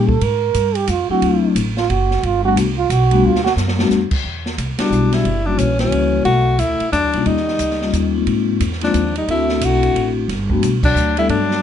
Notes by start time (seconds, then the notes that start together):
Already playing: A#2 G4
0.09 A4, kick
0.21 G#2 A#4, ride
0.54 G2, kick, hi-hat pedal, ride
0.75 G4, ride
0.87 F2 F4, kick, hi-hat pedal, ride
1.09 F#3 A3 C4 D4 E4 F#4, muted upright bass stroke
1.22 D2, kick, ride
1.55 A1, kick, hi-hat pedal, ride
1.77 F4, snare
1.89 F#1 F#4, kick, ride
2.11 snare
2.23 G1 F4, kick, ride
2.44 G3 A3 B3 D4 F#4
2.56 C2, kick, hi-hat pedal, ride
2.78 F4
2.90 B1 F#4, kick, hi-hat pedal, ride
3.11 G3 A3 B3 D4 F#4, ride
3.23 D2 F4
3.36 snare
3.45 F#4, snare
3.56 F#2, snare, hi-hat pedal
3.68 snare
3.79 G3 A3 B3 D4 F#4, snare
3.90 F2, snare, hi-hat pedal
4.11 muted upright bass stroke, kick, crash
4.24 E2, kick
4.46 snare
4.58 C2, kick, hi-hat pedal, ride
4.79 G3 B3 D4 E4 F#4, snare, ride
4.90 B1, hi-hat pedal
5.10 G3 E4, snare, ride
5.24 F#1, kick, ride
5.45 F#3 G3 A#3 C#4 D4 E4 F#4
5.57 A#1 E3 C#4, kick, hi-hat pedal, ride
5.79 E3 G3 A#3 C#4 E4 F#4, snare, ride
5.92 C#2, kick, ride
6.25 B1 A3 F#4, kick, ride
6.58 D2 A3 E4, kick, hi-hat pedal, ride
6.80 muted upright bass stroke, ride
6.91 E2 F#3 D4, kick, hi-hat pedal, ride
7.03 D2
7.13 B1 G3 A#3 C#4 D#4 F4, ride
7.25 D#2 G3 D#4, kick, ride
7.37 snare
7.48 snare
7.59 C#2, kick, hi-hat pedal, ride
7.71 snare
7.81 G3 A#3 C#4 D#4 F4, snare
7.93 D#2, kick, hi-hat pedal, ride
8.14 G#3 A#3 C4 D#4 F4
8.26 G#2, kick, ride
8.60 E2, kick, hi-hat pedal, ride
8.72 snare
8.81 F3 G#3 A#3 C4 D4 D#4 F4, snare, ride
8.94 D#2, kick, hi-hat pedal, ride
9.16 G3 D#4, ride
9.28 D2 A3 C4 D4 E4 F#4, kick, ride
9.49 snare
9.61 B1 A3 F#4, kick, hi-hat pedal, ride
9.83 ride
9.95 A1, kick, ride
10.28 G1, kick, snare, ride
10.50 G3 A3 B3 D4 F#4, kick
10.62 B1, kick, hi-hat pedal, ride
10.83 F#3 D4, kick, crash
10.95 D2, hi-hat pedal
11.17 G3 A3 B3 D4 E4 A4, ride
11.29 G2 F#3 D4, kick, ride
11.51 snare